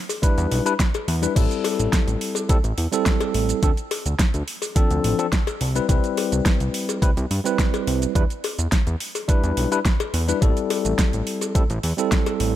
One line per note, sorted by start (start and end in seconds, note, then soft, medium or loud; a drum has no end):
0.09 open hi-hat medium
0.09 cowbell medium
0.09 shaker medium
0.22 0.63 G3 medium
0.22 0.63 D4 medium
0.22 0.63 E4 medium
0.22 0.63 B4 loud
0.22 kick loud
0.22 closed hi-hat loud
0.22 shaker medium
0.38 0.47 E2 loud
0.38 closed hi-hat soft
0.38 shaker soft
0.52 0.61 B1 medium
0.52 open hi-hat loud
0.65 0.72 G3 medium
0.65 0.72 D4 medium
0.65 0.73 E4 medium
0.65 0.73 B4 loud
0.65 closed hi-hat soft
0.65 shaker medium
0.80 kick loud
0.80 snare loud
0.80 closed hi-hat loud
0.80 shaker medium
0.94 closed hi-hat soft
0.94 cowbell medium
0.94 shaker soft
1.08 1.27 E2 medium
1.08 open hi-hat loud
1.22 1.33 G3 medium
1.22 1.33 D4 medium
1.22 1.33 E4 medium
1.22 1.33 B4 medium
1.22 closed hi-hat soft
1.22 shaker medium
1.35 1.46 A1 loud
1.35 2.46 G3 medium
1.35 2.46 C4 medium
1.35 2.46 E4 medium
1.35 2.47 A4 medium
1.35 kick loud
1.35 closed hi-hat loud
1.35 crash medium
1.35 shaker medium
1.51 closed hi-hat soft
1.51 shaker soft
1.64 open hi-hat loud
1.64 cowbell medium
1.79 1.88 A1 medium
1.79 closed hi-hat soft
1.79 shaker medium
1.93 kick loud
1.93 snare loud
1.93 closed hi-hat loud
1.93 shaker medium
2.07 2.17 A1 medium
2.07 closed hi-hat soft
2.07 shaker soft
2.21 open hi-hat loud
2.35 closed hi-hat soft
2.35 cowbell medium
2.35 shaker medium
2.49 2.61 A1 soft
2.49 2.56 G3 loud
2.49 2.56 C4 medium
2.49 2.57 E4 medium
2.49 2.57 A4 loud
2.49 kick loud
2.49 closed hi-hat loud
2.49 shaker medium
2.64 2.73 A1 loud
2.64 closed hi-hat soft
2.64 shaker soft
2.78 2.88 E2 medium
2.78 open hi-hat loud
2.92 3.59 G3 medium
2.92 3.59 C4 medium
2.92 3.60 E4 medium
2.92 3.60 A4 medium
2.92 closed hi-hat soft
2.92 shaker medium
3.06 kick loud
3.06 snare loud
3.06 closed hi-hat loud
3.06 shaker medium
3.21 closed hi-hat soft
3.21 cowbell loud
3.21 shaker soft
3.34 3.54 A1 medium
3.34 open hi-hat loud
3.49 closed hi-hat soft
3.49 shaker medium
3.63 3.72 D2 loud
3.63 3.70 F3 medium
3.63 3.70 C4 medium
3.63 3.70 D4 medium
3.63 3.70 A4 loud
3.63 kick loud
3.63 closed hi-hat loud
3.63 shaker medium
3.77 closed hi-hat soft
3.77 shaker soft
3.91 open hi-hat loud
3.91 cowbell medium
4.06 4.15 D2 medium
4.06 closed hi-hat soft
4.06 shaker medium
4.19 kick loud
4.19 snare loud
4.19 closed hi-hat loud
4.19 shaker medium
4.34 4.43 D2 medium
4.34 closed hi-hat soft
4.34 shaker soft
4.48 open hi-hat loud
4.62 open hi-hat medium
4.62 cowbell medium
4.62 shaker medium
4.76 5.16 F3 loud
4.76 5.16 C4 medium
4.76 5.16 D4 medium
4.76 5.16 A4 loud
4.76 kick loud
4.76 closed hi-hat loud
4.76 shaker medium
4.91 5.00 D2 loud
4.91 closed hi-hat soft
4.91 shaker soft
5.04 5.14 A1 medium
5.04 open hi-hat loud
5.19 5.25 F3 medium
5.19 5.25 C4 medium
5.19 5.26 D4 medium
5.19 5.26 A4 loud
5.19 closed hi-hat soft
5.19 shaker medium
5.32 kick loud
5.32 snare loud
5.32 closed hi-hat medium
5.32 shaker medium
5.47 closed hi-hat soft
5.47 cowbell loud
5.47 shaker soft
5.61 5.80 C2 medium
5.61 open hi-hat loud
5.75 5.86 G3 medium
5.75 5.86 C4 medium
5.75 5.86 E4 medium
5.75 5.86 B4 medium
5.75 closed hi-hat soft
5.75 shaker medium
5.88 5.99 C2 loud
5.88 6.99 G3 medium
5.88 6.99 C4 medium
5.88 6.99 E4 medium
5.88 7.00 B4 medium
5.88 kick loud
5.88 closed hi-hat medium
5.88 shaker medium
6.04 closed hi-hat soft
6.04 shaker soft
6.17 open hi-hat loud
6.17 cowbell medium
6.32 6.41 C2 medium
6.32 closed hi-hat soft
6.32 shaker medium
6.46 kick loud
6.46 snare loud
6.46 closed hi-hat medium
6.46 shaker medium
6.60 6.70 C2 medium
6.60 closed hi-hat soft
6.60 shaker soft
6.74 open hi-hat loud
6.89 closed hi-hat soft
6.89 cowbell medium
6.89 shaker medium
7.02 7.14 C2 soft
7.02 7.09 G3 loud
7.02 7.09 C4 medium
7.02 7.09 E4 medium
7.02 7.10 B4 loud
7.02 kick loud
7.02 closed hi-hat medium
7.02 shaker medium
7.17 7.26 C2 loud
7.17 closed hi-hat soft
7.17 shaker soft
7.31 7.40 G2 medium
7.31 open hi-hat loud
7.44 8.12 G3 medium
7.44 8.12 C4 medium
7.44 8.12 E4 medium
7.44 8.13 B4 loud
7.44 closed hi-hat soft
7.44 shaker medium
7.59 kick loud
7.59 snare loud
7.59 closed hi-hat medium
7.59 shaker medium
7.74 closed hi-hat soft
7.74 cowbell medium
7.74 shaker soft
7.87 8.06 C2 medium
7.87 open hi-hat loud
8.02 closed hi-hat soft
8.02 shaker medium
8.15 8.25 E2 loud
8.15 8.22 G3 medium
8.15 8.23 D4 medium
8.15 8.23 E4 medium
8.15 8.23 B4 loud
8.15 kick loud
8.15 closed hi-hat medium
8.15 shaker medium
8.30 closed hi-hat soft
8.30 shaker soft
8.44 open hi-hat loud
8.44 cowbell medium
8.59 8.68 E2 medium
8.59 closed hi-hat soft
8.59 shaker medium
8.72 kick loud
8.72 snare loud
8.72 closed hi-hat medium
8.72 shaker medium
8.87 8.96 E2 medium
8.87 closed hi-hat soft
8.87 shaker soft
9.00 open hi-hat loud
9.15 open hi-hat medium
9.15 cowbell medium
9.15 shaker medium
9.28 9.69 G3 loud
9.28 9.69 D4 medium
9.28 9.69 E4 medium
9.28 9.69 B4 loud
9.28 kick loud
9.28 closed hi-hat medium
9.28 shaker medium
9.43 9.53 E2 loud
9.43 closed hi-hat soft
9.43 shaker soft
9.57 9.67 B1 medium
9.57 open hi-hat loud
9.71 9.78 G3 medium
9.71 9.78 D4 medium
9.71 9.78 E4 medium
9.71 9.79 B4 loud
9.71 closed hi-hat soft
9.71 shaker medium
9.85 kick loud
9.85 snare loud
9.85 closed hi-hat medium
9.85 shaker medium
10.00 closed hi-hat soft
10.00 cowbell loud
10.00 shaker soft
10.14 10.33 E2 medium
10.14 open hi-hat loud
10.28 10.38 G3 medium
10.28 10.39 D4 medium
10.28 10.39 E4 medium
10.28 10.39 B4 medium
10.28 closed hi-hat soft
10.28 shaker medium
10.41 10.52 A1 loud
10.41 11.51 G3 medium
10.41 11.52 C4 medium
10.41 11.52 E4 medium
10.41 11.52 A4 medium
10.41 kick loud
10.41 closed hi-hat medium
10.41 shaker medium
10.57 closed hi-hat soft
10.57 shaker soft
10.70 open hi-hat loud
10.70 cowbell medium
10.85 10.94 A1 medium
10.85 closed hi-hat soft
10.85 shaker medium
10.99 kick loud
10.99 snare loud
10.99 closed hi-hat medium
10.99 shaker medium
11.13 11.22 A1 medium
11.13 closed hi-hat soft
11.13 shaker soft
11.27 open hi-hat loud
11.41 closed hi-hat soft
11.41 cowbell medium
11.41 shaker medium
11.55 11.67 A1 soft
11.55 11.62 G3 medium
11.55 11.62 C4 medium
11.55 11.62 E4 medium
11.55 11.63 A4 loud
11.55 kick loud
11.55 closed hi-hat medium
11.55 shaker medium
11.70 11.79 A1 loud
11.70 closed hi-hat soft
11.70 shaker soft
11.83 11.93 E2 medium
11.83 open hi-hat loud
11.97 12.56 G3 medium
11.97 12.56 C4 medium
11.97 12.56 E4 medium
11.97 12.56 A4 medium
11.97 closed hi-hat soft
11.97 shaker medium
12.12 kick loud
12.12 snare loud
12.12 closed hi-hat medium
12.12 shaker medium
12.26 closed hi-hat soft
12.26 cowbell medium
12.26 shaker soft
12.40 12.56 A1 medium
12.40 open hi-hat loud